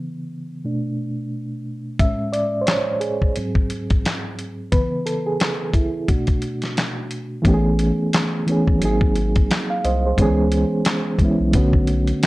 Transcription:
Already playing: C#3 E3 B3
0.64 B2 A3 D4
1.99 A2 G#3 C#4 E5, kick, closed hi-hat
2.33 D5, closed hi-hat
2.61 C5
2.66 C#5, snare, clap, closed hi-hat
3.00 G#4, closed hi-hat
3.22 kick
3.36 G#2 F#3 C4, closed hi-hat
3.55 kick
3.70 closed hi-hat
3.90 kick, closed hi-hat
4.05 snare, clap, closed hi-hat
4.39 closed hi-hat
4.72 C#3 E3 B3 B4, kick, closed hi-hat
5.06 A4, closed hi-hat
5.26 G#4
5.40 snare, clap, closed hi-hat
5.74 E4, kick, closed hi-hat
6.08 B2 A3 D4 F#4, kick, closed hi-hat
6.27 kick, closed hi-hat
6.42 closed hi-hat
6.62 snare, closed hi-hat
6.77 snare, clap, closed hi-hat
7.11 closed hi-hat
7.42 A1 E3 A3 B3, kick, closed hi-hat
7.46 C#4 G4
7.54 G#4
7.79 closed hi-hat
8.13 snare, clap, closed hi-hat
8.46 E3 A3 B3 C#4, closed hi-hat
8.52 G#4
8.67 G#1, kick
8.80 G#1 F#3 A#3 C4, closed hi-hat
8.84 D#4 G#4
9.01 kick
9.16 closed hi-hat
9.36 kick, closed hi-hat
9.51 snare, clap, closed hi-hat
9.70 F5
9.84 C2 C5 D#5, closed hi-hat
10.06 G#4 C5
10.16 C#2 D3 G#3 B3, kick, closed hi-hat
10.20 E3 C#4 G#4
10.52 closed hi-hat
10.85 snare, clap, closed hi-hat
11.19 E3 G#3 B3, kick, closed hi-hat
11.24 C#4 E4
11.40 B1
11.53 B1 D3 A3 B3 C#4, kick, closed hi-hat
11.58 F#4
11.73 kick
11.87 closed hi-hat
12.07 closed hi-hat
12.23 snare, closed hi-hat

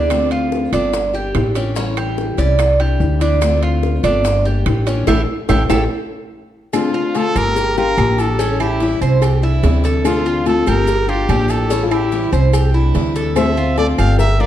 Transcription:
Already playing: D2 G3 D4
0.10 D3 A3 C4 F4, high bongo, high timbale, claves, maracas
0.31 F4, high bongo, high timbale, maracas
0.52 high bongo, maracas
0.72 G1 A3 C4 D4 F4, high bongo, high timbale, claves, maracas
0.93 muted steel-string acoustic guitar stroke, high bongo, high timbale, maracas
1.13 A#3 D4 G4, high bongo, maracas
1.35 A1, high bongo, low bongo, high timbale, low timbale, claves, maracas
1.55 F3 A#3 C#4 D4 G4, high timbale, maracas
1.75 E3 G3 C#4 E4, high bongo, maracas
1.97 G4, high bongo, high timbale, claves, maracas
2.18 high bongo, maracas
2.37 C2 G3 C#4 E4 D5, high bongo, high timbale, maracas
2.59 muted steel-string acoustic guitar stroke, high bongo, high timbale, claves, maracas
2.80 G3 D4 E4 G4, high bongo, high timbale, maracas
3.00 D2, high bongo, low bongo, maracas
3.21 E3 G3 D4 E4, high timbale, maracas
3.41 D3 A3 C4 F4, high bongo, high timbale, claves, maracas
3.63 F4, high bongo, high timbale, maracas
3.83 high bongo, maracas
4.03 G1 A3 C4 D4 F4, high bongo, high timbale, claves, maracas
4.24 muted steel-string acoustic guitar stroke, high bongo, high timbale, maracas
4.44 A#3 D4 G4, high bongo, maracas
4.66 A1, high bongo, low bongo, high timbale, claves, maracas
4.86 F3 A#3 C#4 D4 G4, high timbale, maracas
5.07 A1 A3 C#4 E4 G4 A4, high bongo, high timbale, claves, maracas
5.49 A1 A3 C#4 E4 G4 A4, high bongo, high timbale, claves, maracas
5.70 A1 A3 C#4 E4 G4 A4, high bongo, high timbale, claves, maracas
6.73 D3 A3 C4 D4 F4, cowbell, low agogo, claves, maracas
6.93 A3 C4 F4, maracas
7.15 D3 A3 C4 F4 A4, cowbell, low agogo, maracas
7.36 G1 A3 C4 F4 G4 A#4, low agogo, claves, maracas
7.56 muted steel-string acoustic guitar stroke, cowbell, maracas
7.77 A#3 D4 F4 G4 A#4, maracas
7.97 A1 D3 F3 A#3 D4 G4, cowbell, low agogo, claves, maracas
8.18 E4 A4, cowbell, low agogo, maracas
8.39 E3 G3 C#4 E4, cowbell, maracas
8.60 G3 C#4 E4 G4, low agogo, claves, maracas
8.80 E3 G3 C#4 E4, cowbell, maracas
9.01 C2 G3 C#4 E4 C5, low agogo, maracas
9.22 G4, muted steel-string acoustic guitar stroke, cowbell, low agogo, claves, maracas
9.42 G3 D4 E4, maracas
9.63 D2 C3 E3 G3 D4 E4, cowbell, low timbale, low agogo, maracas
9.84 A4, cowbell, maracas
10.04 D3 A3 C4 D4 F4, cowbell, low agogo, claves, maracas
10.25 A3 C4 F4, maracas
10.46 D3 A3 C4 F4 A4, cowbell, low agogo, maracas
10.66 G1 A3 C4 F4 G4 A#4, low agogo, claves, maracas
10.87 muted steel-string acoustic guitar stroke, cowbell, maracas
11.07 A#3 D4 F4 G4, maracas
11.29 A1 D3 F3 A#3 D4 G4, cowbell, low timbale, low agogo, claves, maracas
11.48 E4 A4, cowbell, low agogo, maracas
11.70 E3 G3 C#4 E4, cowbell, maracas
11.83 F4 A4
11.90 G3 C#4 E4 G4, low agogo, claves, maracas
12.12 E3 G3 C#4 E4, cowbell, maracas
12.32 C2 G3 C#4 E4 C5, low agogo, maracas
12.53 G4, muted steel-string acoustic guitar stroke, cowbell, low agogo, claves, maracas
12.74 G3 D4 E4, maracas
12.94 D2 C3 E3 G3 D4 E4, cowbell, low timbale, low agogo, maracas
13.16 A4, cowbell, maracas
13.35 D3 A3 C4 F4 C5 E5, cowbell, low agogo, claves, maracas
13.56 A3 C4 F4, maracas
13.77 D3 A3 C4 F4 A4 D5, cowbell, low agogo, maracas
13.98 G1 A3 C4 F4 G4 D5 F5, low agogo, claves, maracas
14.19 A#4 E5, muted steel-string acoustic guitar stroke, cowbell, maracas
14.39 A#3 D4 F4 G4 A#4 D5, maracas

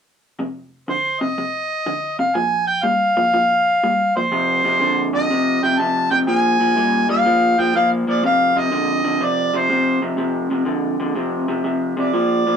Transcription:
0.39 F2 C3
0.88 F2 D3 C5
1.21 F2 C3 D#5
1.38 F2 C3
1.86 F2 D3
2.19 F2 C3 F5
2.35 A#2 F3 G#5
2.67 G5
2.83 A#2 G3 F5
3.17 A#2 F3
3.34 A#2 F3
3.84 A#2 G3
4.16 A#2 F3 C5
4.32 F2 C3
4.64 F2 C3
4.80 F2 D3
5.13 F2 D3 D#5
5.30 F2 C3
5.63 F2 C3 G5
5.78 F2 C3 A5
6.11 F2 C3 G5
6.27 A#2 F3 G#5
6.60 A#2 F3
6.76 A#2 G3
7.09 A#2 G3 F5
7.25 A#2 F3
7.59 A#2 F3 G5
7.74 A#2 F3 F5
8.07 A#2 F3 D5
8.23 F2 C3 F5
8.56 F2 C3 D#5
8.72 F2 D3
9.04 F2 D3
9.21 F2 C3 D5
9.53 F2 C3 C5
9.70 F2 C3
10.02 F2 C3
10.17 F2 C3
10.50 F2 C3
10.65 F2 D3
11.00 F2 D3
11.15 F2 C3
11.48 F2 C3
11.64 F2 C3
11.97 F2 C3 D5
12.14 A#2 F3
12.47 A#2 F3

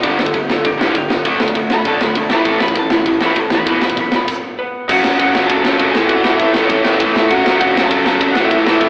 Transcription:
0.03 G1 G2 D3 G3 D5, kick, open hi-hat
0.17 G1 G2 D3 A4, snare
0.26 kick
0.34 G1 G2 D3 G4, kick, open hi-hat
0.49 B1 G2 D3 A4, snare
0.65 G1 G2 D3 G4, kick, open hi-hat
0.78 G1 G2 D3 G3 E4, snare
0.92 G1 G2 D3, kick, open hi-hat
0.96 D3 G4
1.09 G1 G2 D3, snare
1.25 F#1 D3 A3 D4, kick, open hi-hat
1.40 F#1 D3 A3, snare
1.48 kick
1.55 C#2 D3 A3, kick, open hi-hat
1.69 F#1 D3 A3, snare
1.73 B5
1.85 F#1 D3 A3 D4 A5, kick, open hi-hat
1.99 F#2 D3 A3, snare
2.05 B5
2.15 F#1 D3 A3, kick, open hi-hat
2.21 A5
2.30 A1 A2 E3 A3 B5, snare
2.45 A1 A2 E3 A3 A5, kick, open hi-hat
2.60 A1 A2 E3 B5, snare
2.68 kick
2.75 A1 A2 E3 A5, kick, open hi-hat
2.90 D2 A2 E3, snare
2.94 B5
3.06 A1 A2 E3, kick, open hi-hat
3.10 A5
3.20 A1 A2 E3 A3, snare
3.26 B5
3.35 A1 A2 E3 A5, kick, open hi-hat
3.50 D#2 A2 E3, snare
3.55 B5
3.66 E1 E2 B2 E3, kick, open hi-hat
3.70 B5
3.81 E1 E2 B2 B5, snare
3.90 kick
3.96 B1 E2 B2, kick, open hi-hat
4.01 B5
4.12 E1 E2 B2, snare
4.16 B5
4.28 kick, crash
4.59 B3 B4
4.89 F#1 F#2 C#3 F#3 F#5, kick, crash
4.95 F#4
5.03 F#1 F#2 C#3 F#3, snare
5.18 F#1 F#2 C#3 F#3 F#4 F#5, kick, crash
5.34 F#2 C#3 F#3, snare
5.47 F#1 F#2 C#3 F#3 A4 A5, kick, crash
5.61 C#2 F#2 C#3 F#3 A4 A5, snare
5.78 G#1 F#2 C#3 F#3, kick, crash
5.91 A1 A2 E3 G#5, snare
5.95 A3 G#4
6.07 A1 A2 E3 A3 F#4 F#5, kick, crash
6.23 A1 A2 E3 A3, snare
6.37 A1 A2 E3 A3 E4 E5, kick, crash
6.54 A2 E3 A3, snare
6.65 A3 C#5
6.69 A1 A2 E3 C#4, kick, crash
6.84 E2 A2 E3 A3, snare
6.98 A1 A2 E3 A3 A4, kick, crash
7.15 A1 A2 E3 A3, snare
7.28 F#1 F#2 C#3 F#3 F#5, kick, crash
7.33 F#4
7.44 F#1 F#2 C#3 F#3, snare
7.57 F#1 F#2 C#3 F#3 F#5, kick, crash
7.61 F#4
7.75 F#2 C#3 F#3, snare
7.86 A5
7.90 F#1 F#2 C#3 F#3 A4, kick, crash
8.03 C#2 F#2 C#3 F#3 A4 A5, snare
8.19 G#1 F#2 C#3 F#3, kick, crash
8.32 A1 A2 E3 F#5, snare
8.36 A3 F#4
8.45 E5
8.50 A1 A2 E3 A3 E4, kick, crash
8.65 A1 A2 E3 A3, snare
8.75 E5
8.80 A1 A2 E3 A3 E4, kick, crash

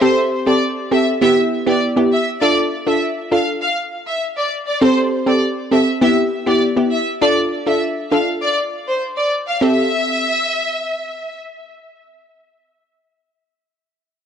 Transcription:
0.01 C4 G4 A4 C5
0.46 C4 G4 A4 D5
0.91 C4 G4 A4 E5
1.21 B3 E4 G4 E5
1.66 B3 E4 G4 D5
1.96 B3 E4 G4
2.12 E5
2.41 D4 F4 A4 D5
2.86 D4 F4 A4 E5
3.31 D4 F4 A4 F5
3.62 F5
4.07 E5
4.37 D5
4.67 D5
4.81 C4 G4 A4 C5
5.26 C4 G4 A4 D5
5.71 C4 G4 A4 E5
6.01 B3 E4 G4 E5
6.46 B3 E4 G4 D5
6.76 B3 E4 G4
6.92 E5
7.21 D4 F4 A4 D5
7.66 D4 F4 A4 E5
8.11 D4 F4 A4 F5
8.42 D5
8.87 C5
9.17 D5
9.47 F5
9.61 C4 G4 A4 E5

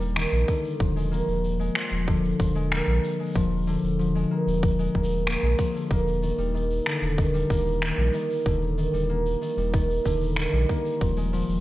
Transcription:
Already playing: D#1 D#3 A#3
0.00 G3, shaker
0.16 D#3, finger snap, shaker
0.32 A#1, shaker
0.48 D3, kick, shaker
0.64 shaker
0.80 D#1 F3, kick, shaker
0.96 G#3, shaker
1.11 A#3, shaker
1.28 D#1, shaker
1.44 shaker
1.59 G#3, shaker
1.75 F3, finger snap, shaker
1.92 D#1, shaker
2.08 D3, kick, shaker
2.25 shaker
2.40 D#1 F3, kick, shaker
2.55 G#3, shaker
2.71 A#3, finger snap, shaker
2.87 A#1, shaker
3.04 shaker
3.19 G#3, shaker
3.23 shaker
3.25 shaker
3.28 shaker
3.31 shaker
3.34 F3, kick, shaker
3.36 D#1, shaker
3.52 shaker
3.57 shaker
3.62 shaker
3.67 D3, shaker
3.73 shaker
3.78 shaker
3.83 D#1, shaker
3.99 F3, shaker
4.15 G#3, shaker
4.31 A#3
4.47 D#1, shaker
4.63 kick, shaker
4.79 G#3, shaker
4.95 D#1 A#3, kick
5.04 shaker
5.11 shaker
5.27 A#3, finger snap, shaker
5.43 A#1 G#3, shaker
5.59 F3, kick, shaker
5.75 D3, shaker
5.90 D#1 A#3, kick, shaker
6.07 shaker
6.22 D#3, shaker
6.38 D#1 G3, shaker
6.54 D#3, shaker
6.71 shaker
6.86 D3, finger snap, shaker
7.02 D#1, shaker
7.18 D#3, kick, shaker
7.34 G3, shaker
7.50 D#1 A#3, kick, shaker
7.67 shaker
7.82 D#3, finger snap, shaker
7.98 A#1 G3, shaker
8.14 D#3, shaker
8.31 shaker
8.46 D#1 D3, kick, shaker
8.62 shaker
8.78 D#3, shaker
8.93 D#1 G3, shaker
9.09 A#3
9.26 shaker
9.41 D#3, shaker
9.57 D#1 G3, shaker
9.73 D#3, kick, shaker
9.90 shaker
10.05 D#1 D3, kick, shaker
10.21 shaker
10.36 D#3, finger snap, shaker
10.53 A#1 G3, shaker
10.69 A#3, kick, shaker
10.86 shaker
11.01 D#1 F3, kick, shaker
11.17 G#3, shaker
11.33 F3, shaker
11.42 shaker
11.49 D#1, shaker

